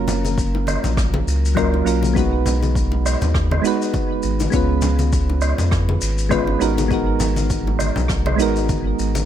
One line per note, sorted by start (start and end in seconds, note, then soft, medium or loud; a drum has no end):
0.00 0.78 F#1 medium
0.00 1.52 F#3 medium
0.00 1.52 A#3 medium
0.00 1.53 C#4 medium
0.00 1.54 F4 medium
0.00 1.54 A#4 medium
0.08 low conga medium
0.08 shaker medium
0.25 high conga medium
0.25 shaker medium
0.38 kick medium
0.38 shaker soft
0.55 high bongo medium
0.67 high conga medium
0.67 low woodblock medium
0.67 shaker medium
0.84 1.23 A#1 medium
0.84 low conga medium
0.84 shaker soft
0.97 kick loud
0.97 cross-stick medium
0.97 shaker medium
1.14 high conga loud
1.27 1.82 C#2 loud
1.27 shaker medium
1.45 shaker medium
1.55 1.82 F#3 medium
1.55 1.83 A#3 medium
1.55 1.83 C#4 medium
1.55 1.83 F4 medium
1.55 1.84 A#4 medium
1.55 kick medium
1.55 high conga medium
1.55 low woodblock medium
1.55 shaker soft
1.74 high bongo medium
1.85 3.16 B1 loud
1.85 2.12 F#3 medium
1.85 2.12 A#3 medium
1.85 2.13 C#4 medium
1.85 2.13 F4 medium
1.85 2.13 A#4 medium
1.85 shaker medium
2.03 high bongo medium
2.03 high conga medium
2.03 shaker medium
2.14 3.60 G#3 medium
2.14 3.61 B3 medium
2.14 3.61 D#4 medium
2.14 kick loud
2.14 shaker soft
2.18 3.62 F#4 medium
2.18 3.63 B4 medium
2.46 low conga medium
2.46 shaker medium
2.63 high conga medium
2.63 shaker medium
2.75 kick medium
2.75 shaker soft
2.92 high bongo medium
3.06 low woodblock medium
3.06 shaker medium
3.21 3.60 D#2 medium
3.21 low conga medium
3.21 shaker medium
3.34 kick medium
3.34 cross-stick medium
3.34 shaker soft
3.51 high conga medium
3.51 low woodblock medium
3.62 4.49 G#3 medium
3.62 4.50 B3 medium
3.62 4.50 D#4 medium
3.62 4.51 F#4 medium
3.62 shaker medium
3.67 4.52 B4 medium
3.82 shaker medium
3.94 kick medium
3.94 high conga medium
3.94 shaker soft
4.23 4.48 G#1 medium
4.23 shaker medium
4.40 high bongo medium
4.40 high conga medium
4.40 shaker soft
4.50 5.54 C#2 medium
4.50 6.27 G#3 medium
4.50 6.28 B3 medium
4.50 6.29 C#4 medium
4.50 kick loud
4.50 shaker soft
4.55 6.29 F4 medium
4.55 6.30 B4 medium
4.82 low conga medium
4.82 shaker medium
4.99 high conga medium
4.99 shaker medium
5.13 kick medium
5.13 shaker soft
5.30 high bongo medium
5.41 low woodblock medium
5.41 shaker medium
5.58 5.98 F2 medium
5.58 low conga medium
5.58 shaker medium
5.71 kick loud
5.71 cross-stick medium
5.71 shaker medium
5.89 high conga medium
6.01 6.57 G#1 loud
6.01 shaker loud
6.18 shaker medium
6.29 6.57 G#3 medium
6.29 6.58 B3 medium
6.29 6.58 C#4 medium
6.29 6.58 F4 medium
6.29 6.59 B4 loud
6.29 kick medium
6.29 high conga medium
6.29 low woodblock medium
6.29 shaker soft
6.47 high bongo medium
6.59 7.91 G#1 loud
6.59 6.87 G#3 medium
6.59 6.87 B3 medium
6.59 6.88 D#4 medium
6.59 6.88 F#4 medium
6.59 6.88 A#4 medium
6.59 shaker medium
6.78 high bongo medium
6.78 high conga medium
6.78 shaker medium
6.88 8.35 G#3 medium
6.88 8.36 B3 medium
6.88 8.36 D#4 medium
6.88 kick loud
6.88 shaker soft
6.93 8.37 F#4 medium
6.93 8.38 A#4 medium
7.20 low conga loud
7.20 shaker medium
7.36 high conga medium
7.36 shaker medium
7.50 kick medium
7.50 shaker medium
7.67 high bongo medium
7.79 high conga medium
7.79 low woodblock medium
7.79 shaker medium
7.96 8.41 B1 medium
7.96 low conga medium
7.96 shaker medium
8.08 kick loud
8.08 cross-stick medium
8.08 shaker medium
8.26 high conga medium
8.26 low woodblock medium
8.36 8.95 G#1 medium
8.36 9.24 G#3 medium
8.36 9.25 B3 medium
8.36 9.25 D#4 medium
8.36 shaker medium
8.40 9.25 F#4 medium
8.40 9.25 A#4 medium
8.56 shaker medium
8.69 kick medium
8.69 high conga medium
8.69 shaker soft
8.99 9.23 G#1 medium
8.99 shaker medium
9.15 high bongo medium
9.15 high conga medium
9.15 shaker medium